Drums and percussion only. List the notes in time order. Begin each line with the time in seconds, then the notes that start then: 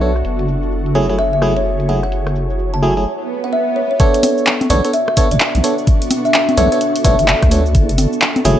0.01 cabasa
0.16 cross-stick, cabasa
0.25 closed hi-hat, cabasa
0.39 closed hi-hat
0.48 cabasa
0.63 cabasa
0.71 cabasa
0.86 closed hi-hat
0.95 cabasa
1.09 closed hi-hat, cabasa
1.18 cross-stick, closed hi-hat, cabasa
1.42 cross-stick, cabasa
1.56 closed hi-hat, cabasa
1.65 cabasa
1.80 closed hi-hat
1.89 cabasa
2.03 cross-stick, cabasa
2.12 closed hi-hat, cabasa
2.27 cross-stick, closed hi-hat
2.35 cabasa
2.50 cabasa
2.59 cabasa
2.74 closed hi-hat
2.82 cabasa
2.97 closed hi-hat, cabasa
4.00 kick, closed hi-hat, cabasa
4.14 closed hi-hat
4.23 open hi-hat, high conga, cabasa
4.38 cabasa
4.47 clap, cabasa
4.61 closed hi-hat, high conga
4.70 cross-stick, open hi-hat, cabasa
4.85 closed hi-hat, cabasa
4.93 closed hi-hat, cabasa
5.08 cross-stick
5.17 kick, open hi-hat, cabasa
5.31 closed hi-hat, cabasa
5.40 clap, cabasa
5.55 closed hi-hat
5.64 open hi-hat, cabasa
5.78 cabasa
5.87 kick, closed hi-hat, cabasa
6.02 closed hi-hat
6.11 open hi-hat, high conga, cabasa
6.25 cabasa
6.34 clap, cabasa
6.49 closed hi-hat, high conga
6.57 open hi-hat, cabasa
6.72 closed hi-hat, cabasa
6.81 closed hi-hat, cabasa
6.96 open hi-hat
7.05 kick, open hi-hat, cabasa
7.19 closed hi-hat, cabasa
7.28 clap, cabasa
7.42 kick, cross-stick, closed hi-hat
7.51 open hi-hat, cabasa
7.66 cabasa
7.75 kick, closed hi-hat, cabasa
7.89 closed hi-hat
7.98 open hi-hat, high conga, cabasa
8.13 cabasa
8.22 clap, cabasa
8.36 closed hi-hat, high conga
8.45 cross-stick, open hi-hat, cabasa